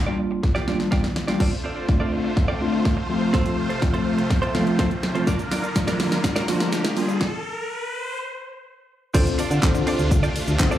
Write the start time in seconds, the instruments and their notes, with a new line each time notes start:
0.07 tine electric piano G3 A#3 D4 F4, clean electric guitar A#3 F4 G4 D5
0.19 muted clean electric guitar stroke
0.31 muted clean electric guitar stroke
0.43 muted clean electric guitar stroke, kick, snare
0.55 clean electric guitar A#3 F4 G4 D5, snare
0.67 tine electric piano G3 A#3 D4 F4, clean electric guitar A#3 F4 G4 D5, snare
0.80 snare
0.91 clean electric guitar A#3 F4 G4 D5, kick, snare
1.03 muted clean electric guitar stroke, snare
1.16 muted clean electric guitar stroke, snare
1.27 tine electric piano G3 A#3 D4 F4, clean electric guitar A#3 F4 G4 D5, snare
1.40 supersaw synth D3 A3 F4 C5, clean electric guitar C4 F4 A4 D5, kick, snare, crash, riser
1.52 muted clean electric guitar stroke
1.64 clean electric guitar C4 F4 A4 D5
1.76 clean electric guitar C4 F4 A4 D5
1.88 tine electric piano A3 C4 D4 F4, muted clean electric guitar stroke, kick, snare
2.00 clean electric guitar C4 F4 A4 D5
2.12 muted clean electric guitar stroke
2.24 muted clean electric guitar stroke
2.36 muted clean electric guitar stroke, kick, snare
2.48 clean electric guitar C4 F4 A4 D5
2.60 tine electric piano A3 C4 D4 F4, muted clean electric guitar stroke
2.73 muted clean electric guitar stroke
2.85 muted clean electric guitar stroke, kick, snare
2.97 muted clean electric guitar stroke
3.09 supersaw synth C3 A3, tine electric piano F3 A3 C4 F4
3.21 muted clean electric guitar stroke
3.33 clean electric guitar C4 F4 A4 C5, kick, snare, closed hi-hat
3.46 closed hi-hat
3.58 muted clean electric guitar stroke
3.69 clean electric guitar C4 F4 A4 C5, closed hi-hat
3.82 tine electric piano F3 A3 C4 F4, muted clean electric guitar stroke, kick, snare, closed hi-hat
3.94 clean electric guitar C4 F4 A4 C5, closed hi-hat
4.06 muted clean electric guitar stroke
4.18 muted clean electric guitar stroke, closed hi-hat
4.30 muted clean electric guitar stroke, kick, snare, closed hi-hat
4.42 clean electric guitar C4 F4 A4 C5, closed hi-hat
4.54 tine electric piano F3 A3 C4 F4, clean electric guitar C4 F4 A4 C5, snare
4.66 muted clean electric guitar stroke, closed hi-hat
4.78 clean electric guitar C4 F4 A4 C5, kick, snare, closed hi-hat
4.91 muted clean electric guitar stroke, closed hi-hat
5.03 muted clean electric guitar stroke, snare
5.15 tine electric piano F3 A3 C4 F4, clean electric guitar C4 F4 A4 C5, closed hi-hat
5.27 supersaw synth D3 A#3 A#4, clean electric guitar D4 F4 A#4 D5, kick, snare, closed hi-hat, shaker
5.39 muted clean electric guitar stroke, closed hi-hat, shaker
5.51 clean electric guitar D4 F4 A#4 D5, snare, open hi-hat, shaker
5.63 clean electric guitar D4 F4 A#4 D5, closed hi-hat, shaker
5.75 tine electric piano F3 A#3 D4 F4, muted clean electric guitar stroke, kick, snare, closed hi-hat, shaker
5.87 clean electric guitar D4 F4 A#4 D5, snare, closed hi-hat, shaker
6.00 muted clean electric guitar stroke, snare, open hi-hat
6.12 muted clean electric guitar stroke, snare, closed hi-hat, shaker
6.24 muted clean electric guitar stroke, kick, snare, closed hi-hat, shaker
6.36 clean electric guitar D4 F4 A#4 D5, snare, closed hi-hat, shaker
6.48 tine electric piano F3 A#3 D4 F4, muted clean electric guitar stroke, snare, open hi-hat, shaker
6.60 muted clean electric guitar stroke, snare, closed hi-hat, shaker
6.72 muted clean electric guitar stroke, snare, closed hi-hat, shaker
6.84 muted clean electric guitar stroke, snare, closed hi-hat, shaker
6.96 tine electric piano G3 A#3 D4 F4, supersaw synth G3, open hi-hat, shaker
7.08 muted clean electric guitar stroke, closed hi-hat, shaker
7.21 kick, snare
9.14 fm bass D2, supersaw synth C3 A3 D4 F4, clean electric guitar C4 F4 A4 D5, tine electric piano C4 D4 F4 A4 C5, kick, closed hi-hat, crash, shaker
9.26 muted clean electric guitar stroke, closed hi-hat, shaker
9.38 clean electric guitar C4 F4 A4 D5, open hi-hat, shaker
9.50 fm bass D3, clean electric guitar C4 F4 A4 D5, closed hi-hat, shaker
9.63 tine electric piano C4 D4 F4 A4 C5, muted clean electric guitar stroke, kick, snare, clap, closed hi-hat, shaker
9.75 fm bass D3, muted clean electric guitar stroke, closed hi-hat, shaker
9.87 clean electric guitar C4 F4 A4 D5, open hi-hat, shaker
9.99 fm bass D2, closed hi-hat, shaker
10.11 fm bass D3, muted clean electric guitar stroke, kick, closed hi-hat, shaker
10.23 clean electric guitar C4 F4 A4 D5, closed hi-hat, shaker
10.35 muted clean electric guitar stroke, open hi-hat, shaker
10.47 fm bass D2, muted clean electric guitar stroke, closed hi-hat, shaker
10.59 fm bass D3, tine electric piano C4 D4 F4 A4 C5, muted clean electric guitar stroke, kick, snare, clap, closed hi-hat, shaker
10.71 clean electric guitar C4 F4 A4 D5, closed hi-hat, shaker